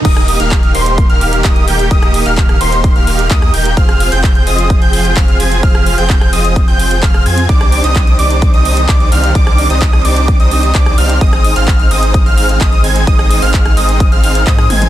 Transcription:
<<
  \new Staff \with { instrumentName = "Analog synth lead" } { \time 4/4 \key ees \major \tempo 4 = 129 ees'''8. f'''8. c'''8. f'''8. ees'''8 g'''8 | ees'''8. f'''8. c'''8. f'''8. ees'''8 g'''8 | f'''8. g'''8. ees'''8. g'''8. f'''8 aes'''8 | f'''8. g'''8. ees'''8. g'''8. f'''8 aes'''8 |
d'''8. ees'''8. d'''8. ees'''8. d'''8 f'''8 | d'''8. ees'''8. d'''8. ees'''8. d'''8 f'''8 | ees'''8. f'''8. ees'''8. f'''8. ees'''8 aes'''8 | ees'''8. f'''8. ees'''8. f'''8. ees'''8 aes'''8 | }
  \new Staff \with { instrumentName = "Supersaw synth" } { \time 4/4 \key ees \major <bes ees' g' bes' ees''>8. <bes ees' g' bes' f''>8. <bes ees' g' bes' c''>8. <bes ees' g' bes' f''>8. <bes ees' g' bes' ees''>8 <bes ees' g' bes' g''>8 | <bes ees' g' bes' ees''>8. <bes ees' g' bes' f''>8. <bes ees' g' bes' c''>8. <bes ees' g' bes' f''>8. <bes ees' g' bes' ees''>8 <bes ees' g' bes' g''>8 | <c' f' aes' c'' f''>8. <c' f' aes' c'' g''>8. <c' f' aes' c'' ees''>8. <c' f' aes' c'' g''>8. <c' f' aes' c'' f''>8 <c' f' aes' c'' aes''>8 | <c' f' aes' c'' f''>8. <c' f' aes' c'' g''>8. <c' f' aes' c'' ees''>8. <c' f' aes' c'' g''>8. <c' f' aes' c'' f''>8 <c' f' aes' c'' aes''>8 |
<d' ees' g' c'' d''>8. <d' ees' g' c'' ees''>8. <d' ees' g' c'' d''>8. <d' ees' g' c'' ees''>8. <d' ees' g' c'' d''>8 <d' ees' g' c'' f''>8 | <d' ees' g' c'' d''>8. <d' ees' g' c'' ees''>8. <d' ees' g' c'' d''>8. <d' ees' g' c'' ees''>8. <d' ees' g' c'' d''>8 <d' ees' g' c'' f''>8 | <c' ees' aes' c'' ees''>8. <c' ees' aes' c'' f''>8. <c' ees' aes' c'' ees''>8. <c' ees' aes' c'' f''>8. <c' ees' aes' c'' ees''>8 <c' ees' aes' c'' aes''>8 | <c' ees' aes' c'' ees''>8. <c' ees' aes' c'' f''>8. <c' ees' aes' c'' ees''>8. <c' ees' aes' c'' f''>8. <c' ees' aes' c'' ees''>8 <c' ees' aes' c'' aes''>8 | }
  \new Staff \with { instrumentName = "String section" } { \clef bass \time 4/4 \key ees \major << { <ees g'>1~ | <ees g'>1 | <f aes'>1~ | <f aes'>1 |
ees1~ | ees1 | ees1~ | ees1 | } \\ { bes1~ | bes1 | c'1~ | c'1~ |
c'1~ | c'1 | aes1~ | aes1 | } >> }
  \new Staff \with { instrumentName = "Sub bass" } { \clef bass \time 4/4 \key ees \major ees,,8. ees,,8. ees,,8. ees,,8. ees,,8 ees,,8 | ees,,8. ees,,8. ees,,8. ees,,8. ees,8 ees,,8 | f,,8. f,,8. f,,8. f,,8. f,,8 f,,8 | f,,8. f,,8. f,,8. f,,8. f,,8 f,8 |
c,8. c,8. c,8. c,8. c,8 c,8 | c,8. c,8. c,8. c,8. c,8 c,8 | aes,,8. aes,,8. aes,,8. aes,,8. aes,,8 aes,,8 | aes,,8. aes,,8. aes,,8. aes,,8. aes,8 aes,,8 | }
  \new DrumStaff \with { instrumentName = "Drums" } \drummode { \time 4/4 <cymc hh bd>16 <hh ss>16 hho16 hh16 <hc hh bd>16 hh16 hho16 hh16 <hh bd>16 hh16 hho16 hh16 <hc hh bd>16 hh16 hho16 hh16 | <hh bd>16 <hh ss>16 hho16 hh16 <hc hh bd>16 <hh ss>16 hho16 hh16 <hh bd>16 hh16 hho16 hh16 <hc hh bd>16 <hh ss>16 hho16 hh16 | <hh bd>16 <hh ss>16 hho16 hh16 <hc hh bd>16 hh16 hho16 hh16 <hh bd>16 hh16 hho16 hh16 <hc hh bd>16 hh16 hho16 hh16 | <hh bd>16 <hh ss>16 hho16 hh16 <hc hh bd>16 <hh ss>16 hho16 hh16 <hh bd>16 hh16 hho16 hh16 <hc hh bd>16 <hh ss>16 hho16 hh16 |
<hh bd>16 <hh ss>16 hho16 hh16 <hc hh bd>16 hh16 hho16 hh16 <hh bd>16 hh16 hho16 hh16 <hc hh bd>16 hh16 hho16 hh16 | <hh bd>16 <hh ss>16 hho16 hh16 <hc hh bd>16 <hh ss>16 hho16 hh16 <hh bd>16 hh16 hho16 hh16 <hc hh bd>16 <hh ss>16 hho16 hh16 | <hh bd>16 <hh ss>16 hho16 hh16 <hc hh bd>16 hh16 hho16 hh16 <hh bd>16 hh16 hho16 hh16 <hc hh bd>16 hh16 hho16 hh16 | <hh bd>16 <hh ss>16 hho16 hho16 <hc hh bd>16 <hh ss>16 hho16 hh16 <hh bd>16 hh16 hho16 hh16 <hc hh bd>16 <hh ss>16 <hho tommh>16 <hh toml>16 | }
>>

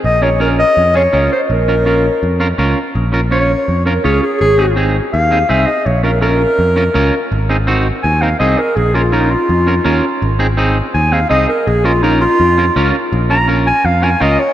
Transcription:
<<
  \new Staff \with { instrumentName = "Clarinet" } { \time 4/4 \key bes \minor \tempo 4 = 165 ees''8 des''8 bes'8 ees''4 des''4 c''8 | bes'2. r4 | r4 des''4. bes'8 aes'8 aes'8 | aes'4 r4 f''4 e''8 ees''8 |
des''8 bes'8 bes'2. | r2 aes''8 f''8 ees''8 bes'8 | aes'8 f'8 ees'8 f'2 r8 | r2 aes''8 f''8 ees''8 bes'8 |
aes'8 f'8 ees'8 f'2 r8 | r8 bes''8 r8 aes''8 f''8 aes''8 ees''8 des''8 | }
  \new Staff \with { instrumentName = "Clean electric guitar" } { \time 4/4 \key bes \minor r8 <des' f' bes'>8 <des' f' bes'>8 r4 <des' f' aes'>8 <des' f' bes'>8 r8 | r8 <des' f' bes'>8 <des' f' bes'>8 r4 <des' f' bes'>8 <des' f' bes'>8 r8 | r8 <des' f' bes'>8 <des' f' des''>8 r4 <des' f' bes'>8 <des' f' des''>8 r8 | r8 <c' ees' aes'>8 <c' ees' aes'>8 r4 <c' ees' aes'>8 <c' ees' aes'>8 r8 |
r8 <des' f' bes'>8 <des' f' bes'>8 r4 <des' f' bes'>8 <des' f' bes'>8 r8 | r8 <c' ees' aes'>8 <c' ees' ges'>8 r4 <c' ees' bes'>8 <c' ees' aes'>8 r8 | r8 <des' f' bes'>8 <des' f' bes'>8 r4 <des' f' bes'>8 <des' f' bes'>8 r8 | r8 <c' ees' aes'>8 <c' ees' aes'>8 r4 <c' ees' aes'>8 <c' ees' aes'>8 r8 |
r8 <des' f' bes'>8 <des' f' bes'>8 r4 <des' f' bes'>8 <des' f' bes'>8 r8 | r8 <des' f' bes'>8 <des' f' bes'>8 r4 <des' f' bes'>8 <des' f' bes'>8 r8 | }
  \new Staff \with { instrumentName = "Picked electric bass" } { \clef bass \time 4/4 \key bes \minor bes,,2 f,4 des,8 r8 | bes,,2 f,4 des,8 r8 | bes,,2 f,4 des,8 r8 | aes,,2 ees,4 c,8 r8 |
bes,,2 f,4 des,8 r8 | aes,,2 ees,4 c,8 r8 | bes,,2 f,4 ees,8 r8 | aes,,2 ees,4 c,8 r8 |
bes,,2 f,4 des,8 r8 | bes,,2 f,4 des,8 r8 | }
>>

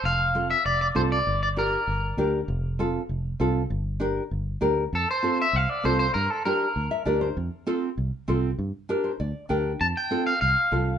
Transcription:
<<
  \new Staff \with { instrumentName = "Clean electric guitar" } { \time 4/4 \key f \major \tempo 4 = 197 f''4. e''8 d''8 d''8 c''8 d''8~ | d''8 d''8 bes'2~ bes'8 r8 | r1 | r1 |
a'8 c''4 e''8 f''8 d''8 c''8 c''8 | bes'8 a'8 bes'2 r4 | r1 | r1 |
a''8 g''4 f''8 f''2 | }
  \new Staff \with { instrumentName = "Nylon-string guitar" } { \time 4/4 \key f \major << { r1 | r1 | r1 | r1 |
r1 | r2 r8 e''8 d''8 c''8 | r1 | r4. c''8 d''4 g''4 |
r1 | } \\ { r4 <c' f' a'>8 r4. <c' f' a'>8 r8 | r4 <d' g' bes'>8 r4. <d' g' bes'>8 r8 | r4 <c' f' a'>8 r4. <c' f' a'>8 r8 | r4 <d' g' bes'>8 r4. <d' g' bes'>8 r8 |
r4 <c' f' a'>8 r4. <c' f' a'>8 r8 | r4 <d' g' bes'>8 r4. <d' g' bes'>8 r8 | r4 <c' f' a'>8 r4. <c' f' a'>8 r8 | r4 <d' g' bes'>8 r4. <d' g' bes'>8 r8 |
r4 <c' f' a'>8 r4. <c' f' a'>8 r8 | } >> }
  \new Staff \with { instrumentName = "Fingered electric bass" } { \clef bass \time 4/4 \key f \major f,,2 f,,4 c,4 | g,,2 g,,4 d,4 | f,,2 f,,4 c,4 | g,,2 g,,4 d,4 |
f,8 r4. c,8 r8 c,4 | g,8 r4. d,8 r8 d,4 | f,8 r4. c,8 r8 c,4 | g,8 r4. d,8 r8 d,4 |
f,8 r4. c,8 r8 c,4 | }
>>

